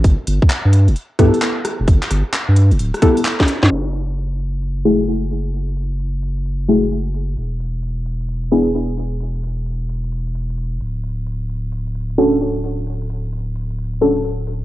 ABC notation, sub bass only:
X:1
M:4/4
L:1/16
Q:"Swing 16ths" 1/4=131
K:F#m
V:1 name="Sub bass" clef=bass
=G,,, z G,,, z2 =G,,2 E,,, z2 G,, z4 E,,, | =G,,, z G,,, z2 =G,,2 E,,, D,,, z6 G,, | F,,,16- | F,,,16 |
E,,,16- | E,,,12- E,,,2 D,,,2- | D,,,16- | D,,,16 |]